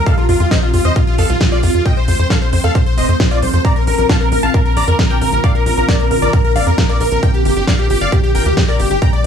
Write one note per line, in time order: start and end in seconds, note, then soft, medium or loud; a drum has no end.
0.06 0.14 A4 medium
0.06 0.14 F5 loud
0.06 kick loud
0.06 closed hi-hat medium
0.18 0.25 F4 medium
0.18 closed hi-hat soft
0.29 0.36 F2 loud
0.29 0.36 F4 medium
0.29 open hi-hat loud
0.40 0.47 F2 medium
0.40 0.47 F4 medium
0.40 closed hi-hat soft
0.51 0.59 C5 medium
0.51 0.59 D#5 medium
0.51 0.59 D#5 loud
0.51 kick loud
0.51 snare loud
0.51 closed hi-hat medium
0.62 0.70 F4 medium
0.62 closed hi-hat soft
0.73 0.80 F2 loud
0.73 0.81 F4 medium
0.73 open hi-hat loud
0.85 0.92 F2 medium
0.85 0.92 C5 medium
0.85 0.92 D#5 medium
0.85 closed hi-hat medium
0.96 1.03 F4 medium
0.96 1.04 F4 medium
0.96 kick loud
0.96 closed hi-hat medium
1.07 1.15 F4 medium
1.07 closed hi-hat soft
1.18 1.25 F2 medium
1.18 1.26 A4 medium
1.18 1.26 F5 loud
1.18 open hi-hat loud
1.30 1.36 C2 medium
1.30 1.37 F4 medium
1.30 closed hi-hat medium
1.41 1.48 F4 medium
1.41 kick loud
1.41 snare loud
1.41 closed hi-hat medium
1.52 1.59 F4 medium
1.52 1.59 D5 medium
1.52 closed hi-hat soft
1.63 1.70 F2 loud
1.63 1.71 F4 medium
1.63 open hi-hat loud
1.74 1.81 F2 medium
1.74 1.82 F4 medium
1.74 closed hi-hat medium
1.85 1.93 D#5 medium
1.85 1.93 G5 loud
1.85 kick loud
1.85 closed hi-hat soft
1.97 2.04 C5 medium
1.97 closed hi-hat soft
2.08 2.15 F2 loud
2.08 2.15 C5 medium
2.08 open hi-hat loud
2.19 2.26 F2 medium
2.19 2.27 C5 medium
2.19 closed hi-hat soft
2.30 2.38 A4 medium
2.30 2.38 F5 medium
2.30 kick loud
2.30 snare loud
2.30 closed hi-hat soft
2.41 2.49 C5 medium
2.41 closed hi-hat soft
2.53 2.59 F2 loud
2.53 2.60 C5 medium
2.53 open hi-hat loud
2.64 2.71 F2 medium
2.64 2.71 A4 medium
2.64 2.71 F5 loud
2.64 2.71 F5 medium
2.64 closed hi-hat medium
2.75 2.82 C5 medium
2.75 2.83 C5 medium
2.75 kick loud
2.75 closed hi-hat soft
2.86 2.94 C5 medium
2.86 closed hi-hat soft
2.97 3.04 F1 medium
2.97 3.05 C5 medium
2.97 3.05 D#5 medium
2.97 3.05 D#5 loud
2.97 open hi-hat loud
3.09 3.15 F2 medium
3.09 3.16 C5 medium
3.09 closed hi-hat medium
3.20 3.27 C5 medium
3.20 kick loud
3.20 snare loud
3.20 closed hi-hat medium
3.31 3.39 F4 medium
3.31 3.38 D5 loud
3.31 3.38 D5 medium
3.31 closed hi-hat soft
3.42 3.49 C2 medium
3.42 3.50 C5 medium
3.42 open hi-hat loud
3.53 3.60 F2 medium
3.53 3.61 C5 medium
3.53 closed hi-hat medium
3.65 3.72 D5 medium
3.65 3.72 A#5 loud
3.65 kick loud
3.65 closed hi-hat medium
3.76 3.83 A#4 medium
3.76 closed hi-hat soft
3.87 3.94 A#1 medium
3.87 3.94 A#4 medium
3.87 open hi-hat loud
3.98 4.05 A#1 medium
3.98 4.06 A#4 medium
3.98 closed hi-hat medium
4.09 4.17 F5 medium
4.09 4.17 A5 medium
4.09 kick loud
4.09 snare loud
4.09 closed hi-hat medium
4.21 4.28 A#4 medium
4.21 closed hi-hat soft
4.32 4.39 A#1 loud
4.32 4.39 A#4 medium
4.32 open hi-hat loud
4.43 4.50 A#1 medium
4.43 4.50 F5 medium
4.43 4.50 A5 loud
4.43 closed hi-hat medium
4.54 4.62 A#4 medium
4.54 kick loud
4.54 closed hi-hat soft
4.65 4.73 A#4 medium
4.65 closed hi-hat soft
4.77 4.83 A#1 loud
4.77 4.84 D5 medium
4.77 4.84 A#5 loud
4.77 open hi-hat loud
4.88 4.95 F2 medium
4.88 4.95 A#4 medium
4.88 closed hi-hat medium
4.99 5.06 A#4 medium
4.99 kick loud
4.99 snare loud
4.99 closed hi-hat medium
5.10 5.18 A#4 medium
5.10 5.18 G5 loud
5.10 5.18 G5 medium
5.10 closed hi-hat soft
5.21 5.28 A#1 loud
5.21 5.29 A#4 medium
5.21 open hi-hat loud
5.32 5.39 A#1 medium
5.32 5.40 A#4 medium
5.32 closed hi-hat medium
5.44 5.51 D5 medium
5.44 5.51 F5 loud
5.44 kick loud
5.44 closed hi-hat medium
5.55 5.62 A#4 medium
5.55 closed hi-hat soft
5.66 5.73 A#1 loud
5.66 5.74 A#4 medium
5.66 open hi-hat loud
5.77 5.84 A#1 medium
5.77 5.85 A#4 medium
5.77 closed hi-hat medium
5.89 5.96 A#4 medium
5.89 5.96 D5 loud
5.89 5.96 D5 medium
5.89 kick loud
5.89 snare loud
5.89 closed hi-hat medium
6.00 6.07 A#4 medium
6.00 closed hi-hat soft
6.11 6.18 A#1 loud
6.11 6.18 A#4 medium
6.11 open hi-hat loud
6.22 6.29 A#1 medium
6.22 6.29 A#4 medium
6.22 6.29 D5 loud
6.22 6.30 D5 loud
6.22 closed hi-hat medium
6.33 6.41 A#4 medium
6.33 kick loud
6.33 closed hi-hat medium
6.44 6.52 A#4 medium
6.44 closed hi-hat soft
6.56 6.62 A#1 loud
6.56 6.63 D5 medium
6.56 6.63 F5 loud
6.56 open hi-hat loud
6.67 6.74 F2 medium
6.67 6.74 A#4 medium
6.67 closed hi-hat medium
6.78 6.85 A#4 medium
6.78 6.86 A#4 medium
6.78 kick loud
6.78 snare loud
6.78 closed hi-hat medium
6.89 6.97 A#4 medium
6.89 6.97 D5 loud
6.89 6.97 D5 medium
6.89 closed hi-hat soft
7.00 7.07 A#1 loud
7.00 7.08 A#4 medium
7.00 open hi-hat loud
7.12 7.18 A#1 medium
7.12 7.19 A#4 medium
7.12 closed hi-hat medium
7.23 7.30 A#4 medium
7.23 7.30 G5 loud
7.23 kick loud
7.23 closed hi-hat medium
7.34 7.41 G4 medium
7.34 7.42 G4 medium
7.34 closed hi-hat soft
7.45 7.52 G1 loud
7.45 7.53 G4 medium
7.45 open hi-hat loud
7.56 7.63 G1 medium
7.56 7.64 G4 medium
7.56 closed hi-hat medium
7.68 7.75 D5 medium
7.68 7.75 F5 medium
7.68 kick loud
7.68 snare loud
7.68 closed hi-hat medium
7.79 7.86 G4 medium
7.79 closed hi-hat soft
7.90 7.97 G1 loud
7.90 7.97 G4 medium
7.90 7.98 G4 medium
7.90 open hi-hat loud
8.01 8.08 G1 medium
8.01 8.09 D5 medium
8.01 8.09 F5 loud
8.01 closed hi-hat medium
8.12 8.20 G4 medium
8.12 kick loud
8.12 closed hi-hat medium
8.23 8.31 G4 medium
8.23 closed hi-hat soft
8.35 8.42 G1 medium
8.35 8.42 A#4 medium
8.35 8.42 G5 loud
8.35 open hi-hat loud
8.46 8.53 D2 medium
8.46 8.53 G4 medium
8.46 closed hi-hat medium
8.57 8.65 G4 medium
8.57 kick loud
8.57 snare loud
8.57 closed hi-hat medium
8.68 8.76 A#4 medium
8.68 8.76 D5 medium
8.68 closed hi-hat soft
8.79 8.86 G1 medium
8.79 8.87 G4 medium
8.79 open hi-hat loud
8.91 8.97 G1 medium
8.91 8.98 G4 medium
8.91 closed hi-hat medium
9.02 9.09 G5 medium
9.02 9.09 A#5 loud
9.02 kick loud
9.02 closed hi-hat medium
9.13 9.20 D5 medium
9.13 9.21 D5 medium
9.13 closed hi-hat soft